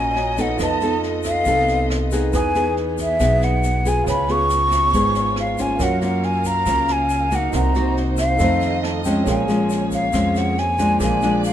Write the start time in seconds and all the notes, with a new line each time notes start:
Already playing: A#1 A#2 A#3 C#4 F#4 C#5 D#5 G#5 A#5
0.15 F#4 C#5 D#5 A#5, snare
0.37 B3 D#4 A4 F#5, kick, snare, shaker
0.57 F2 F3 B3 F4 A4 B4, kick, cross-stick, snare, shaker
0.61 D#5 A5
0.81 B3 D#4 A4, snare, shaker
1.03 snare
1.23 F5, kick, cross-stick, snare, shaker
1.45 C2 C3 B3 D#4 A4, kick, snare, shaker
1.68 snare, shaker
1.90 cross-stick, snare
2.11 B3 D#4 G#4, kick, snare, shaker
2.33 E2 E3 B3 G#4 B4 G#5 D#6, kick, cross-stick, snare, shaker
2.55 B3 D#4 G#4, snare, shaker
2.77 snare
2.98 E5, kick, snare, shaker
3.19 B1 B2 B3 D#4 G#4, kick, cross-stick, snare, shaker
3.42 F#5, snare, shaker
3.63 snare, shaker
3.85 B3 F4 G#4 G#5, kick, snare, shaker
4.04 C#2 C#3 F4 B4 C#5, kick, cross-stick, snare, shaker
4.08 B3 F4 G#5 B5
4.28 B3 F4 G#4 C#6, snare, shaker
4.50 snare, shaker
4.71 kick, cross-stick, snare, shaker
4.93 G#1 G#2 B3 F4 G#4, kick, snare, shaker
5.15 snare, shaker
5.36 F5, cross-stick, snare
5.58 A#3 C#4 F4 G#5, kick, snare, shaker
5.76 F#2 A#4 F5, kick, cross-stick, snare, shaker
5.80 F#3 F#4 A#4 C#5 F5 F#5
6.02 A#3 C#4 F4 F#5, snare, shaker
6.23 G#5, snare
6.44 A#5, kick, snare, shaker
6.66 C#2 C#3 A#3 C#4 F4, kick, cross-stick, snare, shaker
6.88 snare, shaker
6.92 G#5
7.09 snare, shaker
7.31 A#3 D#4 F#4, kick, snare, shaker
7.35 F#5
7.50 C2 C3 D#4 A#4, kick, cross-stick, snare, shaker
7.54 A#3 D#4 C5 F#5 A#5
7.74 A#3 D#4 F#4, snare, shaker
7.97 snare
8.17 F5, kick, cross-stick, snare, shaker
8.36 F2 D#3 D#4 A4 D#5, kick, snare, shaker
8.40 A3 C4 F4 C5 F5
8.61 snare, shaker
8.83 A5, cross-stick, snare
9.04 F3 G#3 C#4 G5, kick, snare, shaker
9.24 A#1 A#2 A#3 C#4 G#4 C#5, kick, cross-stick, snare, shaker
9.28 A#4 F5 G#5
9.48 F3 G#3 C#4, snare, shaker
9.70 snare, shaker
9.91 F5, kick, snare, shaker
10.13 F2 F3 G#3 C#4, kick, cross-stick, snare, shaker
10.35 F#5, snare, shaker
10.58 G#5, snare
10.78 F3 G#3 D4, kick, snare, shaker
10.98 A#1 A#2 D4 G#4 D5, kick, cross-stick, snare, shaker
11.02 A#4 F5 G#5
11.22 F3 G#3 D4, snare, shaker
11.44 F5, snare, shaker